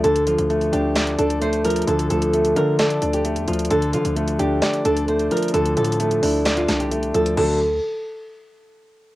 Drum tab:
CC |------------------------------------------------------------------------------------------------|------------------------------------------------------------------------------------------------|------------------------------------------------------------------------------------------------|------------------------------------------------------------------------------------------------|
HH |x-----x-----x-----x-----x-----x-----x-----------x-----x-----x-----x-----x-----x-----x--x--x--x--|x-----x-----x-----x-----x-----x-----x-----------x-----x-----x-----x-----x-----x-----x--x--x--x--|x-----x-----x-----x-----x-----x-----x-----------x-----x-----x-----x-----x-----x-----x--x--x--x--|x-----x-----x---x---x---x-----x-----o-----------x-----x-----x-----x-----x-----x-----x-----x-----|
SD |------------------------------------------------o-----------------------------------------------|------------------------------------------------o-----------------------------------------------|------------------------------------------------o-----------------------------------------------|------------------------------------------------o-----------o-----------------------------------|

CC |x-----------------------------------------------------------------------------------------------|
HH |------------------------------------------------------------------------------------------------|
SD |------------------------------------------------------------------------------------------------|